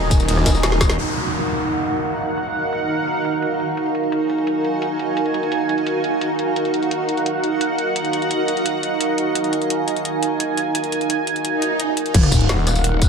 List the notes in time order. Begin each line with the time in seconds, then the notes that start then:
Already playing: D#1 D#4 F#4 A#4 D#5 G#5 A#5
0.11 kick, closed hi-hat, ride, tambourine
0.20 closed hi-hat, tambourine
0.28 D#1, closed hi-hat, ride
0.37 cross-stick, snare
0.46 D#1, kick, snare, closed hi-hat, ride, tambourine
0.55 snare, tambourine
0.63 snare, closed hi-hat, ride
0.72 snare
0.81 kick, snare, closed hi-hat, ride, tambourine
0.90 snare, closed hi-hat, tambourine
0.98 D#4 A#4 F5 F#5, downlifter
1.14 F#4, closed hi-hat
1.24 closed hi-hat
1.33 closed hi-hat
1.68 closed hi-hat
1.85 closed hi-hat
2.03 closed hi-hat
2.20 closed hi-hat
2.38 closed hi-hat
2.46 closed hi-hat
2.55 closed hi-hat
2.64 closed hi-hat
2.73 closed hi-hat
2.90 closed hi-hat
2.99 closed hi-hat
3.07 closed hi-hat
3.25 closed hi-hat
3.42 closed hi-hat
3.60 closed hi-hat
3.77 G#5, closed hi-hat
3.86 closed hi-hat
3.95 closed hi-hat
4.04 closed hi-hat
4.12 closed hi-hat
4.30 closed hi-hat
4.38 closed hi-hat
4.47 closed hi-hat
4.65 closed hi-hat
4.82 closed hi-hat
4.99 closed hi-hat
5.17 closed hi-hat
5.26 closed hi-hat
5.34 closed hi-hat
5.43 closed hi-hat
5.52 closed hi-hat
5.69 closed hi-hat
5.78 closed hi-hat
5.87 closed hi-hat
6.04 closed hi-hat
6.21 closed hi-hat
6.39 closed hi-hat
6.56 F#5, closed hi-hat
6.65 closed hi-hat
6.70 D#5, closed hi-hat
6.83 closed hi-hat
6.91 closed hi-hat
7.09 closed hi-hat
7.17 closed hi-hat
7.26 closed hi-hat
7.44 closed hi-hat
7.61 closed hi-hat
7.78 closed hi-hat
7.96 closed hi-hat
8.05 closed hi-hat
8.13 closed hi-hat
8.22 closed hi-hat
8.31 closed hi-hat
8.48 closed hi-hat
8.57 closed hi-hat
8.66 closed hi-hat
8.83 closed hi-hat
9.01 closed hi-hat
9.18 closed hi-hat
9.35 G#5, closed hi-hat
9.44 closed hi-hat
9.53 closed hi-hat
9.62 closed hi-hat
9.70 closed hi-hat
9.88 closed hi-hat
9.96 closed hi-hat
10.05 closed hi-hat
10.23 closed hi-hat
10.40 closed hi-hat
10.57 closed hi-hat
10.75 closed hi-hat
10.84 closed hi-hat
10.92 closed hi-hat
11.01 closed hi-hat
11.10 closed hi-hat
11.27 closed hi-hat
11.36 closed hi-hat
11.45 closed hi-hat, swell
11.62 closed hi-hat
11.80 closed hi-hat
11.97 closed hi-hat
12.06 closed hi-hat
12.14 D#1 D#4 A#4 F5 F#5, kick, closed hi-hat, crash, sub drop
12.23 cross-stick, closed hi-hat
12.32 kick, closed hi-hat, tambourine
12.41 closed hi-hat
12.49 snare, closed hi-hat
12.58 snare
12.67 cross-stick, closed hi-hat, tambourine
12.76 closed hi-hat, tambourine
12.84 closed hi-hat
13.02 kick, closed hi-hat, tambourine